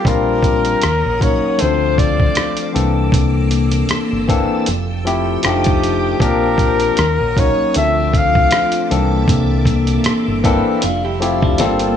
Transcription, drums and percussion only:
0.05 kick, closed hi-hat
0.43 kick, closed hi-hat
0.65 closed hi-hat
0.82 cross-stick, closed hi-hat
1.21 kick, closed hi-hat
1.59 closed hi-hat
1.98 kick, closed hi-hat
2.20 kick
2.35 cross-stick, closed hi-hat
2.57 closed hi-hat
2.76 closed hi-hat
3.12 kick, closed hi-hat
3.51 closed hi-hat
3.72 closed hi-hat
3.89 cross-stick, closed hi-hat
4.29 kick, closed hi-hat
4.66 closed hi-hat
5.07 closed hi-hat
5.43 cross-stick, closed hi-hat
5.64 kick, closed hi-hat
5.84 closed hi-hat
6.20 kick, closed hi-hat
6.58 kick, closed hi-hat
6.80 closed hi-hat
6.97 cross-stick, closed hi-hat
7.37 kick, closed hi-hat
7.74 closed hi-hat
8.14 kick, closed hi-hat
8.35 kick
8.51 cross-stick, closed hi-hat
8.72 closed hi-hat
8.91 closed hi-hat
9.28 kick, closed hi-hat
9.65 kick, closed hi-hat
9.87 closed hi-hat
10.04 cross-stick, closed hi-hat
10.44 kick, closed hi-hat
10.82 closed hi-hat
11.22 closed hi-hat
11.42 kick
11.58 snare, closed hi-hat
11.79 closed hi-hat

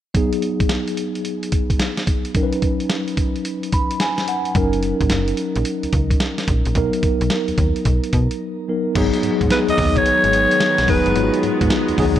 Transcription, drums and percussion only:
0.15 kick, closed hi-hat
0.33 closed hi-hat
0.42 closed hi-hat
0.60 kick, closed hi-hat
0.69 snare, closed hi-hat
0.88 closed hi-hat
0.97 closed hi-hat
1.15 closed hi-hat
1.25 closed hi-hat
1.43 closed hi-hat
1.52 kick, closed hi-hat
1.70 kick, closed hi-hat
1.80 snare, closed hi-hat
1.97 snare, closed hi-hat
2.07 kick, closed hi-hat
2.25 closed hi-hat
2.35 kick, closed hi-hat
2.53 closed hi-hat
2.62 kick, closed hi-hat
2.80 closed hi-hat
2.90 snare, closed hi-hat
3.08 closed hi-hat
3.17 kick, closed hi-hat
3.36 closed hi-hat
3.45 closed hi-hat
3.63 closed hi-hat
3.72 kick, closed hi-hat
3.91 closed hi-hat
4.00 snare, closed hi-hat
4.18 snare, closed hi-hat
4.28 closed hi-hat
4.45 closed hi-hat
4.55 kick, closed hi-hat
4.73 closed hi-hat
4.83 closed hi-hat
5.01 kick, closed hi-hat
5.10 snare, closed hi-hat
5.28 closed hi-hat
5.37 closed hi-hat
5.56 closed hi-hat
5.65 closed hi-hat
5.83 closed hi-hat
5.93 kick, closed hi-hat
6.11 kick, closed hi-hat
6.20 snare, closed hi-hat
6.38 snare, closed hi-hat
6.48 kick, closed hi-hat
6.65 closed hi-hat
6.75 kick, closed hi-hat
6.93 closed hi-hat
7.03 kick, closed hi-hat
7.21 closed hi-hat
7.30 snare, closed hi-hat
7.48 closed hi-hat
7.58 kick, closed hi-hat
7.76 closed hi-hat
7.85 kick, closed hi-hat
8.04 closed hi-hat
8.13 kick, closed hi-hat
8.31 closed hi-hat
8.95 kick, closed hi-hat, crash
9.13 closed hi-hat
9.23 closed hi-hat
9.41 kick, closed hi-hat
9.50 snare, closed hi-hat
9.68 closed hi-hat
9.78 kick, open hi-hat
9.96 kick, closed hi-hat
10.06 closed hi-hat
10.24 closed hi-hat
10.33 closed hi-hat
10.51 closed hi-hat
10.60 snare, closed hi-hat
10.78 snare, closed hi-hat
10.88 kick, open hi-hat
11.06 closed hi-hat
11.16 closed hi-hat
11.34 closed hi-hat
11.43 closed hi-hat
11.61 kick, closed hi-hat
11.70 snare, closed hi-hat
11.88 closed hi-hat
11.98 kick, open hi-hat
12.16 kick, closed hi-hat

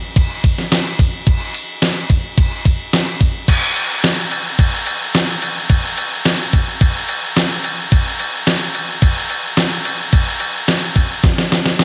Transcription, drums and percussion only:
0.16 kick, ride
0.44 kick, ride
0.58 snare
0.72 snare, ride
0.99 kick, ride
1.27 kick, ride
1.54 ride
1.82 snare, ride
2.10 kick, ride
2.38 kick, ride
2.65 kick, ride
2.93 snare, ride
3.21 kick, ride
3.48 kick, crash
3.76 crash
4.04 snare, crash
4.31 crash
4.59 kick, crash
4.87 crash
5.15 snare, crash
5.42 crash
5.70 kick, crash
5.97 crash
6.25 snare, crash
6.53 kick, crash
6.81 kick, crash
7.08 crash
7.36 snare, crash
7.64 crash
7.92 kick, crash
8.20 crash
8.47 snare, crash
8.75 crash
9.02 kick, crash
9.30 crash
9.57 snare, crash
9.85 crash
10.13 kick, crash
10.40 crash
10.68 snare, crash
10.96 kick, crash
11.24 kick, snare
11.38 snare
11.52 snare
11.66 snare
11.79 snare

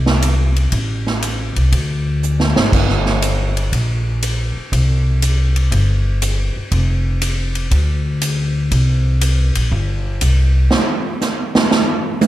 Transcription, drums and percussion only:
0.06 snare
0.22 hi-hat pedal, ride
0.56 ride
0.72 kick, ride
1.07 snare
1.22 hi-hat pedal, ride
1.56 ride
1.72 kick, ride
2.23 hi-hat pedal
2.40 snare
2.56 snare
2.73 kick, crash
2.89 snare
3.06 snare
3.22 hi-hat pedal, ride
3.57 ride
3.72 kick, ride
4.22 hi-hat pedal, ride
4.72 kick, ride
5.22 hi-hat pedal, ride
5.56 ride
5.72 kick, ride
6.22 hi-hat pedal, ride
6.72 kick, ride
7.22 hi-hat pedal, ride
7.55 ride
7.71 kick, ride
8.21 hi-hat pedal, ride
8.71 kick, ride
9.21 hi-hat pedal, ride
9.55 ride
9.72 kick
10.21 hi-hat pedal, ride
10.71 snare
11.21 snare, hi-hat pedal
11.55 snare
11.71 snare
12.21 hi-hat pedal, high tom

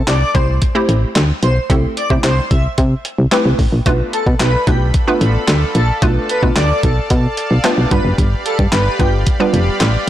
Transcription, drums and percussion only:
0.07 snare, clap, closed hi-hat
0.35 kick, closed hi-hat
0.62 kick, closed hi-hat
0.89 closed hi-hat
1.15 snare, clap, closed hi-hat
1.43 closed hi-hat
1.70 kick, closed hi-hat
1.97 closed hi-hat
2.10 kick
2.23 snare, clap, closed hi-hat
2.51 kick, closed hi-hat
2.78 kick, closed hi-hat
3.05 closed hi-hat
3.32 snare, clap, closed hi-hat
3.59 kick, open hi-hat
3.86 kick, closed hi-hat
4.13 closed hi-hat
4.26 kick
4.40 snare, clap, closed hi-hat
4.67 kick, closed hi-hat
4.94 kick, closed hi-hat
5.21 closed hi-hat
5.48 snare, clap, closed hi-hat
5.75 closed hi-hat
6.02 kick, closed hi-hat
6.29 closed hi-hat
6.43 kick
6.56 snare, clap, closed hi-hat
6.83 kick, closed hi-hat
7.10 kick, closed hi-hat
7.37 closed hi-hat
7.64 snare, clap, closed hi-hat
7.91 kick, closed hi-hat
8.18 kick, closed hi-hat
8.46 closed hi-hat
8.59 kick
8.72 snare, clap, closed hi-hat
9.00 kick, closed hi-hat
9.27 kick, closed hi-hat
9.54 closed hi-hat
9.80 snare, clap, closed hi-hat

